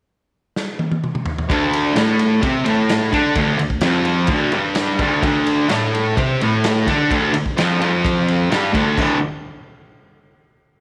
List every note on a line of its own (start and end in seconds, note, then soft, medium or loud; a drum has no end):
0.56 snare medium
0.79 high tom medium
0.92 high tom medium
1.04 mid tom medium
1.15 mid tom loud
1.26 floor tom loud
1.38 floor tom loud
1.49 1.94 D2 loud
1.49 1.96 D3 loud
1.49 kick loud
1.49 ride loud
1.73 ride medium
1.94 2.41 A2 medium
1.94 2.42 A3 loud
1.94 snare loud
1.94 ride loud
2.19 ride medium
2.42 2.65 C3 medium
2.42 2.66 C4 loud
2.42 kick loud
2.42 ride loud
2.65 3.12 A2 medium
2.65 3.13 A3 loud
2.65 ride medium
2.89 snare loud
2.89 ride loud
3.12 3.35 D3 loud
3.12 3.35 D4 loud
3.12 kick medium
3.12 ride medium
3.35 3.57 D2 medium
3.35 3.59 D3 loud
3.35 kick loud
3.35 ride loud
3.58 3.78 D2 medium
3.58 ride medium
3.70 kick medium
3.81 4.28 F2 loud
3.81 4.29 F3 loud
3.81 snare loud
3.81 ride loud
4.05 ride medium
4.27 4.52 D2 medium
4.27 4.52 D3 loud
4.27 kick loud
4.27 ride loud
4.52 4.99 G2 loud
4.52 5.00 G3 loud
4.52 ride medium
4.75 snare loud
4.75 ride loud
4.99 5.22 D2 loud
4.99 5.23 D3 loud
4.99 kick medium
4.99 ride medium
5.23 5.68 D2 loud
5.23 5.70 D3 loud
5.23 kick loud
5.23 ride loud
5.46 ride medium
5.69 6.15 A2 medium
5.69 6.16 A3 loud
5.69 snare loud
5.69 ride loud
5.95 ride medium
6.17 6.39 C3 medium
6.17 6.40 C4 loud
6.17 kick loud
6.17 ride medium
6.41 6.87 A2 medium
6.41 6.87 A3 loud
6.41 ride medium
6.64 snare loud
6.64 ride loud
6.87 7.09 D3 loud
6.87 7.10 D4 loud
6.87 kick medium
6.87 ride medium
7.10 7.32 D2 medium
7.10 7.34 D3 medium
7.10 kick loud
7.10 ride loud
7.33 7.52 D2 medium
7.33 ride medium
7.46 kick medium
7.57 7.79 F2 medium
7.57 7.80 F3 loud
7.57 snare loud
7.57 ride loud
7.80 8.50 F2 medium
7.80 8.50 F3 loud
7.80 ride medium
8.05 kick loud
8.05 ride loud
8.28 ride medium
8.51 8.73 G2 medium
8.51 8.73 G3 loud
8.51 snare loud
8.51 ride medium
8.73 8.96 D2 loud
8.73 8.96 D3 loud
8.73 kick medium
8.73 ride medium
8.98 9.16 D2 medium
8.98 9.17 A2 medium
8.98 9.17 D3 loud
8.98 kick loud
8.98 crash medium